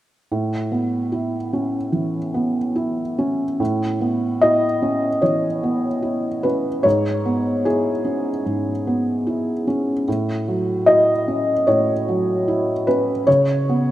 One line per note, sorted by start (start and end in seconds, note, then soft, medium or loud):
0.32 1.89 A2 soft
0.72 1.37 B3 soft
1.12 1.77 E4 soft
1.53 2.18 C#4 soft
1.92 2.58 E3 soft
2.34 3.01 B3 soft
2.76 3.43 E4 soft
3.19 3.60 C#4 soft
3.60 5.19 A2 soft
4.01 4.66 B3 soft
4.41 5.07 E4 soft
4.41 5.22 D#5 medium
4.82 5.47 C#4 soft
5.22 5.87 E3 soft
5.22 6.44 C#5 soft
5.63 6.28 B3 soft
6.02 6.68 E4 soft
6.43 6.85 C#4 soft
6.43 6.85 B4 medium
6.83 8.42 G#2 soft
6.83 7.65 C#5 medium
7.26 7.90 B3 soft
7.65 8.30 E4 soft
7.65 9.66 G#4 medium
8.05 8.70 C#4 soft
8.46 10.03 G#2 soft
8.87 9.51 B3 soft
9.27 9.91 E4 soft
9.67 10.07 C#4 soft
10.08 11.63 A2 soft
10.48 11.11 F#3 soft
10.86 11.51 E4 soft
10.86 11.67 D#5 medium
11.28 11.91 C#4 soft
11.67 13.23 A2 soft
11.67 12.87 C#5 medium
12.08 12.71 F#3 soft
12.48 13.11 E4 soft
12.87 13.28 C#4 soft
12.87 13.27 B4 medium
13.27 13.91 C#3 soft
13.27 13.91 C#5 medium
13.69 13.91 B3 soft